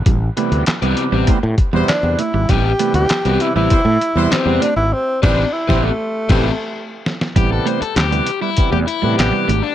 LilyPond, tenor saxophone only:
\new Staff \with { instrumentName = "Tenor saxophone" } { \time 4/4 \key a \minor \tempo 4 = 99 r2. d'8 e'8 | g'8. g'8. e'16 e'4~ e'16 c'8 d'16 e'16 | c'8 d'8 e'8 a2 r8 | r1 | }